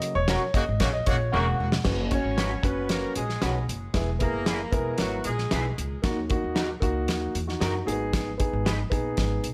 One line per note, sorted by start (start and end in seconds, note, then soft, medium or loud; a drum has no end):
0.00 0.11 C#3 medium
0.00 0.11 F#3 medium
0.00 0.12 A#3 medium
0.00 0.17 D#5 medium
0.00 closed hi-hat medium
0.15 0.35 E1 medium
0.15 0.56 C#5 loud
0.28 0.41 C#4 medium
0.28 0.41 F#4 medium
0.28 0.41 A#4 medium
0.28 snare loud
0.28 closed hi-hat medium
0.28 high conga medium
0.54 0.64 F#1 medium
0.54 0.63 C#3 medium
0.54 0.63 A#3 medium
0.54 0.63 F#4 loud
0.54 0.81 D#5 medium
0.54 kick medium
0.54 closed hi-hat medium
0.69 0.78 G#1 medium
0.80 1.00 A#1 medium
0.80 0.89 C#3 loud
0.80 0.89 A#3 loud
0.80 0.89 F#4 loud
0.80 0.94 C#5 medium
0.80 kick medium
0.80 snare loud
0.80 closed hi-hat medium
0.80 muted conga soft
0.80 low conga medium
0.93 1.07 D#5 medium
1.06 1.27 A#1 loud
1.06 1.16 C#3 medium
1.06 1.16 A#3 medium
1.06 1.16 F#4 loud
1.06 1.34 C#5 medium
1.06 kick medium
1.06 closed hi-hat medium
1.06 muted conga soft
1.06 low conga medium
1.32 1.53 E1 loud
1.32 1.71 C#3 medium
1.32 1.70 A#3 loud
1.32 1.45 C#4 loud
1.32 1.45 F#4 medium
1.32 1.71 F#4 loud
1.32 1.46 A#4 loud
1.32 1.81 F#5 medium
1.32 high conga medium
1.60 1.80 E1 medium
1.72 snare medium
1.72 high conga medium
1.84 2.15 F#1 loud
1.84 1.98 C#4 medium
1.84 1.99 F#4 medium
1.84 1.99 B4 medium
1.84 kick loud
1.84 snare loud
1.84 crash medium
2.11 2.38 C#4 medium
2.11 2.61 C#4 medium
2.11 2.39 F#4 medium
2.11 2.39 C#5 medium
2.11 2.61 C#5 loud
2.11 kick medium
2.11 closed hi-hat medium
2.25 2.54 G#1 medium
2.37 2.50 C#4 medium
2.37 2.50 F#4 medium
2.37 2.50 B4 medium
2.37 snare loud
2.37 closed hi-hat medium
2.63 3.03 F#1 medium
2.63 2.85 B3 medium
2.63 3.18 C#4 medium
2.63 3.18 F#4 medium
2.63 3.19 B4 medium
2.63 2.85 B4 medium
2.63 kick medium
2.63 closed hi-hat medium
2.89 3.11 A#3 medium
2.89 3.11 A#4 medium
2.89 snare medium
2.89 closed hi-hat medium
3.16 3.36 A#1 medium
3.16 3.65 G#3 medium
3.16 3.65 G#4 medium
3.16 closed hi-hat medium
3.29 snare soft
3.42 3.62 B1 medium
3.42 3.54 C#4 medium
3.42 3.54 F#4 medium
3.42 3.55 B4 medium
3.42 snare loud
3.42 closed hi-hat medium
3.68 3.88 F#1 medium
3.68 closed hi-hat medium
3.94 4.24 E1 loud
3.94 4.08 B3 medium
3.94 4.08 E4 medium
3.94 4.09 G#4 medium
3.94 kick loud
3.94 snare loud
3.94 closed hi-hat medium
4.19 4.70 A#3 medium
4.19 4.47 B3 medium
4.19 4.48 E4 medium
4.19 4.48 G#4 medium
4.19 4.70 A#4 loud
4.19 kick medium
4.19 closed hi-hat medium
4.33 4.63 F#1 medium
4.46 4.59 E4 medium
4.46 4.59 G#4 medium
4.46 4.60 B4 medium
4.46 snare loud
4.46 closed hi-hat medium
4.72 4.93 E1 medium
4.72 4.95 G#3 medium
4.72 5.27 B3 medium
4.72 5.27 E4 medium
4.72 4.94 G#4 medium
4.72 5.28 A#4 loud
4.72 kick medium
4.72 closed hi-hat medium
4.98 5.19 G#1 medium
4.98 5.20 F#3 medium
4.98 5.20 F#4 medium
4.98 snare medium
4.98 closed hi-hat medium
5.24 5.45 A#1 medium
5.24 5.75 G#3 medium
5.24 5.75 G#4 medium
5.24 closed hi-hat medium
5.38 snare soft
5.51 5.72 B1 medium
5.51 5.64 E4 medium
5.51 5.64 G#4 medium
5.51 5.64 B4 medium
5.51 snare loud
5.51 closed hi-hat medium
5.78 5.98 C#2 medium
5.78 closed hi-hat medium
6.02 6.34 D#2 loud
6.02 6.17 A#3 medium
6.02 6.17 D#4 medium
6.02 6.18 F#4 medium
6.02 kick loud
6.02 snare loud
6.02 closed hi-hat loud
6.29 6.57 A#3 medium
6.29 6.58 D#4 medium
6.29 6.58 F#4 medium
6.29 kick medium
6.29 closed hi-hat medium
6.44 6.74 D#2 medium
6.55 6.68 D#4 medium
6.55 6.68 F#4 medium
6.55 6.69 A#4 medium
6.55 snare loud
6.55 closed hi-hat medium
6.80 7.09 C#2 medium
6.80 7.36 A#3 medium
6.80 7.34 D#4 medium
6.80 7.35 F#4 loud
6.80 kick medium
6.80 closed hi-hat medium
7.08 7.29 D#2 medium
7.08 snare medium
7.08 closed hi-hat medium
7.35 7.55 E2 medium
7.35 closed hi-hat medium
7.48 7.60 D#4 medium
7.48 7.60 F#4 medium
7.48 snare soft
7.60 7.81 F#2 medium
7.60 7.73 D#4 medium
7.60 7.72 F#4 medium
7.60 7.73 F#4 medium
7.60 7.73 A#4 medium
7.60 7.74 A#4 loud
7.60 snare loud
7.60 closed hi-hat medium
7.73 7.85 D#4 soft
7.73 7.99 F#4 medium
7.85 8.37 G#1 medium
7.85 7.93 A#3 medium
7.85 8.29 D#4 medium
7.85 8.29 G#4 loud
7.85 closed hi-hat medium
7.92 8.31 B3 medium
8.13 kick loud
8.13 snare loud
8.13 closed hi-hat loud
8.38 8.66 B3 medium
8.38 8.67 D#4 medium
8.38 8.67 G#4 medium
8.38 kick medium
8.38 closed hi-hat medium
8.53 8.83 G#1 medium
8.65 8.78 D#4 medium
8.65 8.78 G#4 medium
8.65 8.79 B4 medium
8.65 snare loud
8.65 closed hi-hat medium
8.90 9.12 A#1 medium
8.90 9.46 B3 medium
8.90 9.46 D#4 medium
8.90 9.47 G#4 medium
8.90 kick loud
8.90 closed hi-hat medium
9.17 9.38 G#1 medium
9.17 kick medium
9.17 snare medium
9.17 closed hi-hat medium
9.44 9.54 B1 medium
9.44 closed hi-hat medium